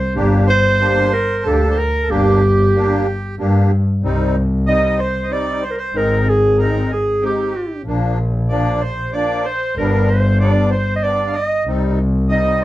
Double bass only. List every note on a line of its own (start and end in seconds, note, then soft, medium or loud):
0.16 0.94 G1 loud
1.46 1.85 D2 medium
2.10 2.87 G1 loud
3.39 3.78 G2 loud
4.03 5.19 C2 medium
5.95 7.10 G#1 medium
7.86 9.01 A#1 medium
9.77 10.91 G1 loud
11.66 12.64 C2 medium